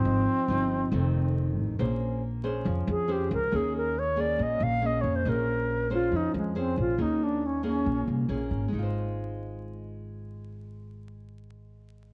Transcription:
<<
  \new Staff \with { instrumentName = "Alto flute" } { \time 4/4 \key aes \major \tempo 4 = 138 c'2. r4 | r2 r8 aes'8 g'8 bes'8 | aes'8 bes'8 des''8 d''8 ees''8 f''8 \tuplet 3/2 { ees''8 des''8 c''8 } | bes'4. f'8 ees'8 aes8 c'8 f'8 |
ees'8 d'8 des'8 des'4 r4. | r1 | r1 | }
  \new Staff \with { instrumentName = "Nylon-string guitar" } { \time 4/4 \key aes \major << { <f c' ees'>4 <f c' ees'>4 <ees a c'>2 | <des' aes' c''>4 r8 <des' aes' c''>4. <des' aes' c''>8 r8 | <bes des' aes'>4 r8 <bes des' aes'>4. <bes des' aes'>4 | <des' aes' c''>4. <des' aes' c''>4. <des' aes' c''>4 |
<bes des' aes'>4 r8 <bes des' aes'>4. <bes des' aes'>4 | <aes ees' f' c''>1~ | <aes ees' f' c''>1 | } \\ { r2 f,2 | bes2 f2 | ees2 bes,2 | bes2 f2 |
ees2 bes,2 | r1 | r1 | } >> }
  \new Staff \with { instrumentName = "Upright bass" } { \clef bass \time 4/4 \key aes \major aes,,8 r8 g,,4 f,,4. a,,8 | bes,,2 f,8 f,4 des,8 | ees,2 bes,,8 bes,,4 f,8 | bes,,2 f,8 f,4 bes,,8 |
ees,2 bes,,8 c,8 bes,,8 aes,,8 | aes,,1~ | aes,,1 | }
>>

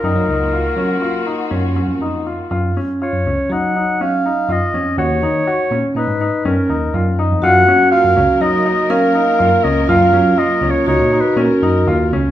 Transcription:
<<
  \new Staff \with { instrumentName = "Clarinet" } { \time 5/4 \key fis \major \tempo 4 = 122 ais'1 r4 | r4 cis''4 fis''4 eis''4 dis''4 | cis''2 b'4 ais'4. r8 | fis''4 eis''4 dis''4 eis''4. dis''8 |
eis''4 \tuplet 3/2 { dis''4 cis''8 cis''4 b'8 } ais'4. r8 | }
  \new Staff \with { instrumentName = "Vibraphone" } { \time 5/4 \key fis \major r1 r4 | r1 r4 | r1 r4 | fis'2. ais'2 |
eis'2 fis'2~ fis'8 r8 | }
  \new Staff \with { instrumentName = "Grand piano" } { \time 5/4 \key fis \major dis'8 dis'8 eis'8 cis'8 eis'8 dis'8 cis'8 cis'8 dis'8 eis'8 | eis'8 cis'8 eis'8 cis'8 dis'8 dis'8 cis'8 dis'8 eis'8 cis'8 | fis'8 dis'8 fis'8 cis'8 dis'8 dis'8 cis'8 dis'8 eis'8 dis'8 | eis'8 cis'8 eis'8 cis'8 dis'8 dis'8 cis'8 dis'8 eis'8 cis'8 |
eis'8 cis'8 eis'8 cis'8 dis'8 dis'8 cis'8 dis'8 eis'8 cis'8 | }
  \new Staff \with { instrumentName = "String section" } { \time 5/4 \key fis \major <ais eis' fis'>1~ <ais eis' fis'>4 | r1 r4 | r1 r4 | <fis ais ais'>1~ <fis ais ais'>4~ |
<fis ais ais'>1~ <fis ais ais'>4 | }
  \new Staff \with { instrumentName = "Tine electric piano" } { \clef bass \time 5/4 \key fis \major fis,16 fis16 cis,4 fis8 r4 fis,8 fis16 eis,4~ eis,16 | fis,8 r8. fis,16 cis,16 r16 fis2 fis,16 r16 eis,8 | dis,16 dis,16 dis8 r8 ais,16 r16 ais,16 gis,8 r16 fis,16 r16 dis,8 fis,8. eis,16 | fis,8 r8. fis,16 cis,16 r16 fis2 fis,16 r16 cis,8 |
fis,16 fis,16 fis8 r8 cis,16 r16 cis,16 ais,8 r16 ais,16 r16 fis,8 dis,8 cis,8 | }
>>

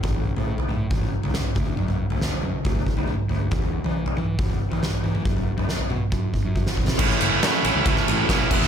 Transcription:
<<
  \new Staff \with { instrumentName = "Overdriven electric guitar" } { \time 4/4 \key a \major \tempo 4 = 138 r1 | r1 | r1 | r1 |
<a, e a cis' e'>8 <a cis' e'>8 <e a cis' e'>8 <a cis' e'>8 <a, e a cis' e'>4 <e a cis' e'>8 <e gis b e'>8 | }
  \new Staff \with { instrumentName = "Fingered electric bass" } { \clef bass \time 4/4 \key a \major a,,8. a,8 r16 a,8 a,,8 r16 cis,8 r16 d,8 | fis,8. d,8 r16 fis,16 r16 d,8 r16 d,8 r16 d,8 | e,8. e8 r16 e8 e,8 r16 e8 r16 e8 | fis,8. fis,8 r16 b,16 r16 fis,8 r16 fis,8 r16 b,,8 |
a,,8 fis,,8 r8 a,,16 cis,16 cis,8 a,,8 b,,8 e,,8 | }
  \new DrumStaff \with { instrumentName = "Drums" } \drummode { \time 4/4 <bd tomfh>16 tomfh8 tomfh16 r16 tomfh16 toml8 <bd tomfh>16 tomfh8 tomfh16 <sn toml>16 tomfh16 <bd tomfh>16 toml16 | tomfh16 tomfh8 tomfh16 sn16 tomfh8. <bd tomfh>16 tomfh16 bd16 tomfh16 toml8 tomfh8 | <bd tomfh>16 tomfh8 tomfh16 r16 tomfh16 toml8 <bd tomfh>16 tomfh8 tomfh16 <sn toml>16 tomfh16 tomfh16 toml16 | <bd tomfh>16 tomfh8 tomfh16 sn16 tomfh16 toml8 bd8 bd8 bd16 sn16 bd16 sn16 |
<cymc bd>16 sn16 cymr8 <cymr sn>8 cymr8 <bd cymr>16 sn16 cymr8 <bd cymr sn>8 <cymc bd>16 sn16 | }
>>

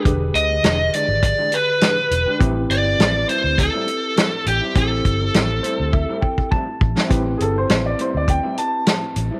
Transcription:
<<
  \new Staff \with { instrumentName = "Upright piano" } { \time 4/4 \key a \minor \tempo 4 = 102 r1 | r1 | r1 | r8 <gis' a'>16 c''8 d''16 c''16 d''16 g''8 a''4. | }
  \new Staff \with { instrumentName = "Lead electric guitar" } { \time 4/4 \key a \minor r8 dis''4 d''8 d''8 b'4. | r8 d''4 c''8 a'4. g'8 | a'2. r4 | r1 | }
  \new Staff \with { instrumentName = "Tine electric piano" } { \time 4/4 \key a \minor << { r1 | r1 | r4. c''8 e''8 g''8 a''4 | r1 | } \\ { <d g' gis' b'>1 | <c' e' g' b'>1 | <c' e' g' c''>1 | <c' e' g' b'>1 | } >> }
  \new Staff \with { instrumentName = "Clean electric guitar" } { \time 4/4 \key a \minor r4 <e gis d' g'>16 r16 <e gis d' g'>16 r8 <e gis d' g'>16 r8 <e gis d' g'>16 r8 <gis d' g'>16 | <a, g c' e'>16 r8. <a, g c' e'>16 r16 <a, g c' e'>16 r8 <a, g c' e'>16 r8 <a, g c' e'>16 r8 <g c' e'>16 | r4 <a, g c' e'>16 r16 <a, g c' e'>16 r8 <a, g c' e'>16 r8 <a, g c' e'>16 r8 <g c' e'>16 | <a, g c' e'>16 r8. <a, g c' e'>16 r16 <a, g c' e'>16 r8 <a, g c' e'>16 r8 <a, g c' e'>16 r8 <g c' e'>16 | }
  \new Staff \with { instrumentName = "Fingered electric bass" } { \clef bass \time 4/4 \key a \minor e,,8 d,8 e,,8 r16 gis,,8 r4 r16 e,,16 r16 | a,,8 g,,8 a,,8 r16 d,8 r4 r16 a,,16 r16 | a,,8 g,,8 a,,8 r16 d,8 r4 r16 a,,16 r16 | a,,8 g,,8 a,,8 r16 d,8 r4 r16 a,,16 r16 | }
  \new DrumStaff \with { instrumentName = "Drums" } \drummode { \time 4/4 <hh bd>8 hh8 <hh sn>8 hh8 <hh bd>8 hh8 <hh sn>8 hh8 | <hh bd>8 hh8 <hh sn>8 hh8 <hh bd>8 hh8 <hh sn>8 hh8 | <hh bd>8 <hh bd>8 <hh sn>8 hh8 bd8 bd16 bd16 bd8 bd16 sn16 | <hh bd>8 hh8 <hh sn>8 hh8 <hh bd>8 hh8 <hh sn>8 hh8 | }
>>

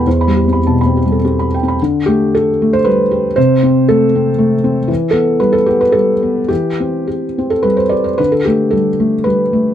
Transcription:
<<
  \new Staff \with { instrumentName = "Felt piano" } { \time 3/4 \key d \mixolydian \tempo 4 = 111 c''16 b''16 g'16 b''16 a''16 b''16 g'16 a'16 g'16 b''16 g''16 b''16 | r8 g'8 a'8. c''16 b'4 | c''4 a'2 | r8 a'8 b'16 a'16 g'16 b'16 a'4 |
g'4.~ g'16 a'16 b'16 c''16 d''16 c''16 | b'16 a'16 g'8 a'4 b'4 | }
  \new Staff \with { instrumentName = "Felt piano" } { \time 3/4 \key d \mixolydian \tuplet 3/2 { e,8 g8 c'8 b,8 c'8 g8 c'4 c'8 } | d8 a8 g'8 a8 g8 g'8 | c8 c'8 a8 c'8 a8 c'8 | e8 b8 g8 b8 g8 b8 |
e8 c'8 g'8 c'8 g8 g'8 | d8 a8 g8 a8 g8 a8 | }
>>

